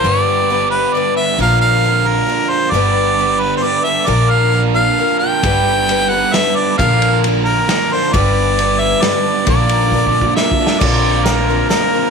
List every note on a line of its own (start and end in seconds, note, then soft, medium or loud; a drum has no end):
0.04 0.83 G1 medium
0.04 0.49 G2 medium
0.04 0.49 D3 medium
0.04 0.49 G3 medium
0.04 0.49 B3 medium
0.04 0.51 D4 medium
0.04 1.39 G4 medium
0.04 0.50 B4 medium
0.04 0.70 D5 medium
0.50 0.94 G3 soft
0.50 0.94 B3 medium
0.50 0.97 D4 medium
0.50 0.96 B4 medium
0.70 0.95 B4 medium
0.94 1.17 G3 medium
0.94 1.17 B3 soft
0.94 1.18 D4 medium
0.94 1.16 B4 medium
0.94 1.16 D5 medium
1.17 1.39 G3 soft
1.17 1.39 B3 soft
1.17 1.40 D4 soft
1.17 1.39 B4 soft
1.17 1.38 E5 medium
1.38 2.18 A#1 medium
1.38 1.84 A#2 medium
1.38 1.84 D3 medium
1.38 1.83 F3 medium
1.38 1.84 A#3 medium
1.38 1.86 D4 medium
1.38 1.85 A#4 medium
1.38 1.60 F5 medium
1.61 2.09 F5 medium
1.84 2.26 F3 medium
1.84 2.27 A#3 medium
1.84 2.29 D4 medium
1.84 2.28 A#4 medium
2.07 2.51 A#4 medium
2.27 2.73 F3 medium
2.27 2.74 A#3 medium
2.27 2.75 D4 soft
2.27 2.74 A#4 medium
2.49 2.72 C5 medium
2.71 3.52 G1 medium
2.71 3.19 G2 medium
2.71 3.19 D3 medium
2.71 3.17 G3 medium
2.71 3.41 D5 medium
2.75 3.18 B3 medium
2.75 3.20 D4 medium
2.75 4.08 G4 medium
2.75 3.19 B4 medium
3.19 3.61 G3 medium
3.19 3.62 B3 medium
3.19 3.63 D4 medium
3.19 3.64 B4 medium
3.40 3.56 B4 medium
3.57 3.64 C5 medium
3.62 3.85 G3 medium
3.62 3.86 B3 medium
3.62 3.85 D4 medium
3.62 3.84 B4 medium
3.62 3.85 D5 medium
3.84 4.07 G3 soft
3.84 4.08 B3 soft
3.84 4.07 D4 soft
3.84 4.07 B4 soft
3.84 4.08 E5 medium
4.06 4.87 A#1 medium
4.06 4.53 A#2 medium
4.06 4.53 D3 medium
4.06 4.50 F3 medium
4.06 4.51 A#3 medium
4.06 4.53 D4 medium
4.06 4.53 A#4 medium
4.06 4.32 D5 medium
4.30 4.62 F5 medium
4.52 4.75 F3 soft
4.52 4.75 A#3 medium
4.52 4.74 D4 medium
4.52 4.73 A#4 medium
4.74 4.97 F3 soft
4.74 4.98 A#3 soft
4.74 4.98 D4 soft
4.74 4.98 A#4 soft
4.74 5.17 F5 medium
4.98 5.21 F3 medium
4.98 5.21 A#3 medium
4.98 5.20 D4 medium
4.98 5.19 A#4 medium
5.19 5.44 A#3 soft
5.19 5.44 D4 soft
5.19 5.43 A#4 soft
5.19 6.11 G5 medium
5.23 5.43 F3 soft
5.43 6.22 G1 medium
5.43 5.88 G2 medium
5.43 5.89 D3 medium
5.43 5.87 G3 medium
5.43 5.88 B3 medium
5.43 5.90 D4 medium
5.43 6.78 G4 medium
5.43 5.89 B4 medium
5.43 kick loud
5.43 ride medium
5.88 6.11 G3 medium
5.88 6.11 B3 medium
5.88 6.10 D4 medium
5.88 6.10 B4 medium
5.88 ride medium
6.09 6.32 G3 soft
6.09 6.33 B3 soft
6.09 6.33 D4 soft
6.09 6.33 B4 soft
6.09 6.35 F#5 medium
6.33 6.78 G3 medium
6.33 6.79 B3 medium
6.33 6.81 D4 medium
6.33 6.79 B4 medium
6.33 6.57 E5 medium
6.33 snare medium
6.33 ride medium
6.55 6.77 D5 medium
6.78 7.57 A#1 medium
6.78 7.24 A#2 medium
6.78 7.24 D3 medium
6.78 7.24 F3 medium
6.78 7.25 A#3 medium
6.78 7.27 D4 medium
6.78 7.25 A#4 medium
6.78 7.20 F5 medium
6.78 kick loud
6.78 ride medium
7.02 ride medium
7.24 7.68 F3 medium
7.24 7.68 A#3 medium
7.24 7.70 D4 medium
7.24 7.70 A#4 medium
7.24 ride medium
7.44 7.94 A#4 medium
7.69 7.91 F3 soft
7.69 7.91 A#3 medium
7.69 7.91 D4 medium
7.69 7.91 A#4 medium
7.69 snare medium
7.69 ride medium
7.92 8.13 F3 soft
7.92 8.14 A#3 soft
7.92 8.13 D4 soft
7.92 8.14 A#4 soft
7.92 8.14 C5 medium
8.13 8.92 G1 medium
8.13 8.58 G2 medium
8.13 8.58 D3 medium
8.13 8.58 G3 medium
8.13 8.58 B3 medium
8.13 8.60 D4 medium
8.13 9.48 G4 medium
8.13 8.58 B4 medium
8.13 8.82 D5 medium
8.13 kick loud
8.13 ride medium
8.59 9.01 G3 medium
8.59 9.03 B3 soft
8.59 9.03 D4 medium
8.59 9.03 B4 medium
8.59 ride soft
8.80 9.03 E5 medium
9.02 9.25 G3 medium
9.02 9.26 B3 medium
9.02 9.26 D4 medium
9.02 9.26 B4 medium
9.02 9.47 D5 medium
9.02 snare medium
9.02 ride medium
9.27 9.46 G3 soft
9.27 9.47 B3 soft
9.27 9.47 D4 soft
9.27 9.48 B4 soft
9.46 10.25 A#1 medium
9.46 9.92 A#2 medium
9.46 9.92 D3 medium
9.46 9.91 F3 medium
9.46 9.92 A#3 medium
9.46 9.92 D4 medium
9.46 9.92 A#4 medium
9.46 10.34 D5 medium
9.46 kick loud
9.46 ride medium
9.69 ride medium
9.92 10.37 F3 medium
9.92 10.37 A#3 medium
9.92 10.38 D4 medium
9.92 10.38 A#4 medium
9.92 kick soft
10.07 kick soft
10.21 kick medium
10.36 10.60 F3 medium
10.36 10.60 A#3 medium
10.36 10.59 D4 medium
10.36 10.81 E5 medium
10.36 snare medium
10.40 10.59 A#4 medium
10.52 kick medium
10.60 10.79 F3 soft
10.60 10.80 A#3 soft
10.60 10.81 D4 soft
10.60 10.81 A#4 soft
10.67 snare medium
10.80 11.60 A#1 medium
10.80 11.25 A#2 medium
10.80 11.26 D3 medium
10.80 11.26 F3 medium
10.80 12.10 A#3 medium
10.80 11.27 C4 medium
10.80 11.26 D4 medium
10.80 12.10 F4 medium
10.80 11.26 A#4 medium
10.80 12.10 C5 medium
10.80 11.26 D5 medium
10.80 12.10 D5 medium
10.80 12.10 A#5 medium
10.80 kick loud
10.80 crash loud
11.25 11.48 F3 medium
11.25 11.49 C4 medium
11.25 11.49 D4 medium
11.25 11.69 A#4 medium
11.25 snare medium
11.25 closed hi-hat medium
11.29 11.48 A#4 medium
11.49 11.68 F3 soft
11.49 11.69 C4 soft
11.49 11.70 D4 soft
11.49 11.71 A#4 soft
11.69 11.92 F3 medium
11.69 11.93 C4 medium
11.69 11.93 D4 medium
11.69 12.10 A#4 medium
11.69 11.93 A#4 medium
11.69 snare medium
11.69 closed hi-hat medium
11.94 12.10 F3 soft
11.94 12.10 C4 soft
11.94 12.10 D4 soft
11.94 12.10 A#4 soft